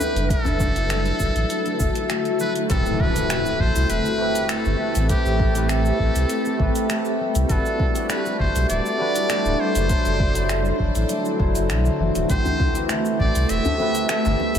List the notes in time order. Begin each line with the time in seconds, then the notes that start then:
Already playing: G3 D4 E4 A4 B4 F#5
0.00 A3 B4, djembe tone, cabasa
0.15 F#1, closed hi-hat, cabasa
0.29 D3 A3 E4 F#4 A4, kick, closed hi-hat, djembe slap, cabasa
0.45 F#1, closed hi-hat, djembe slap, djembe tone, djembe bass, cabasa
0.60 F#3, kick, djembe bass, cabasa
0.76 E4, closed hi-hat, djembe slap, cabasa
0.90 A3, finger snap, closed hi-hat, cabasa
1.06 closed hi-hat, cabasa
1.20 F#1, kick, djembe tone, cabasa
1.36 A1, closed hi-hat, cabasa
1.50 closed hi-hat, cabasa
1.66 A3, closed hi-hat, cabasa
1.80 F#1 A3, kick, djembe slap, djembe tone, cabasa
1.95 closed hi-hat, cabasa
2.10 A3, finger snap, closed hi-hat, cabasa
2.25 closed hi-hat, cabasa
2.40 F#3 B4, cabasa
2.56 E4, closed hi-hat, cabasa
2.69 A1 A3 C4 G4 A4 B4, kick, closed hi-hat, impact, cabasa
2.86 A3, cabasa
2.99 A3 B4, kick
3.14 A3 C4 G4, closed hi-hat, cabasa
3.18 A4
3.30 A3, finger snap, closed hi-hat, cabasa
3.46 cabasa
3.60 A1 G3 C5, kick
3.75 C2 E4, closed hi-hat, cabasa
3.90 E1 A3 B4, closed hi-hat, cabasa
4.05 cabasa
4.18 A3 C4 G4
4.22 B4
4.35 closed hi-hat, cabasa
4.49 A4, finger snap, closed hi-hat, cabasa
4.65 G1 A3, cabasa
4.80 A3
4.95 A1, closed hi-hat, cabasa
5.09 A3 C4 G4 B4, kick, closed hi-hat, cabasa
5.25 A1, cabasa
5.40 G3, kick
5.54 A3 C4 E4 G4 B4, closed hi-hat, cabasa
5.69 A3 A4, finger snap, closed hi-hat, cabasa
5.85 cabasa
6.00 A1, kick
6.16 C2, closed hi-hat, cabasa
6.30 closed hi-hat, cabasa
6.45 A3, cabasa
6.58 A1 A3 C4 G4 B4, kick
6.75 closed hi-hat, cabasa
6.90 A3, finger snap, closed hi-hat, cabasa
7.05 cabasa
7.20 G3
7.35 C2 E4, closed hi-hat, cabasa
7.49 G1 G3 A3 D4 F#4 A4 B4 D5, kick, closed hi-hat, cabasa
7.66 cabasa
7.80 kick
7.94 G3 D4 F#4, closed hi-hat, cabasa
7.99 D5
8.09 B4, finger snap, closed hi-hat, cabasa
8.26 A3, cabasa
8.39 G1 A3 C5, kick
8.56 B1, closed hi-hat, cabasa
8.69 D1 A3 D5, closed hi-hat, cabasa
8.86 cabasa
8.98 G3 D4 F#4 B4
9.16 E4, closed hi-hat, cabasa
9.30 A3, finger snap, closed hi-hat, cabasa
9.45 D1, cabasa
9.60 C5
9.75 F#1, closed hi-hat, cabasa
9.89 D3 F#3 A3 D4 E4 F#4 C5, kick, closed hi-hat, cabasa
10.05 F#1 A3, closed hi-hat, cabasa
10.20 A3, kick
10.34 F#3 D4 E4, closed hi-hat, cabasa
10.38 C5
10.49 A3, finger snap, closed hi-hat, cabasa
10.65 cabasa
10.80 F#1 F#3, kick
10.95 A1 E4, closed hi-hat, cabasa
11.09 A3, closed hi-hat, cabasa
11.25 cabasa
11.38 F#1 F#3 D4 E4, kick
11.42 C5
11.55 A3, closed hi-hat, cabasa
11.70 B1, finger snap, closed hi-hat, cabasa
11.85 A3, cabasa
11.99 F#1 E3
12.15 D1 E4, closed hi-hat, cabasa
12.29 A1 A3 C4 G4 C5, kick, closed hi-hat, djembe slap, cabasa
12.45 djembe tone, djembe bass, cabasa
12.60 G3, kick, djembe bass
12.74 A3 C4 E4 G4, closed hi-hat, djembe slap, cabasa
12.78 B4
12.89 A3, finger snap, closed hi-hat, cabasa
13.05 cabasa
13.20 A1 D5, kick, djembe tone
13.35 C2, closed hi-hat, cabasa
13.49 E1 E5, closed hi-hat, cabasa
13.65 A3, djembe tone, djembe bass, cabasa
13.78 A3 C4 G4, djembe slap, djembe tone
13.82 B4
13.95 closed hi-hat, cabasa
14.09 A3 E5, finger snap, closed hi-hat, cabasa
14.25 G1, djembe slap, cabasa
14.39 G3, djembe tone
14.55 A1 E4, closed hi-hat, cabasa